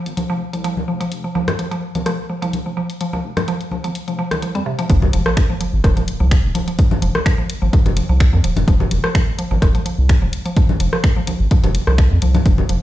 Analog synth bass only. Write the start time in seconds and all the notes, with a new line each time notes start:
0.06 G#1
0.30 F1
0.54 C2
0.88 F1
1.12 F1
1.36 F1
1.95 G#1
2.06 F1
2.43 C2
2.66 F1
3.24 F1
3.84 G#1
4.08 F1
4.31 C2
4.55 F2
4.66 D#1
4.79 F1
4.90 F1
5.13 F1
5.73 G#1
5.84 F1
6.21 C2
6.44 F1
7.02 F1
7.62 G#1
7.86 F1
8.09 C2
8.33 F2
8.44 D#1
8.57 F1
8.68 F1
8.91 F1
9.51 G#1
9.62 F1
9.98 C2
10.22 F1
10.80 F1
11.40 G#1
11.64 F1
11.87 C2
12.11 F2
12.22 C2
12.46 F1
12.69 F1